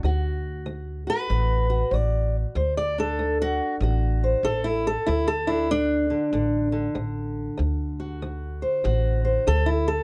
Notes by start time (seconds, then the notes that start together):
0.03 D2 F#4
0.66 D2
1.07 F#4 B4
1.30 A1 D2 F#4
1.70 F#4
1.91 A1 D2 D5
2.55 D2 C5
2.77 D5
2.98 D4 A4
3.19 D2
3.42 F#4
3.81 A1 D2 F#4
4.24 C5
4.43 A1 D2 A4
4.64 E4
4.87 A4
5.07 D2 E4
5.28 A4
5.47 D4 E4
5.71 D2 D4
6.10 D3
6.33 A1 D2 D3
6.72 D3
6.95 A1 D2
7.58 D2
8.00 F#4
8.22 D2
8.62 C5
8.84 A1 D2 F#4
9.25 C5
9.47 D2 A4
9.66 E4
9.88 A4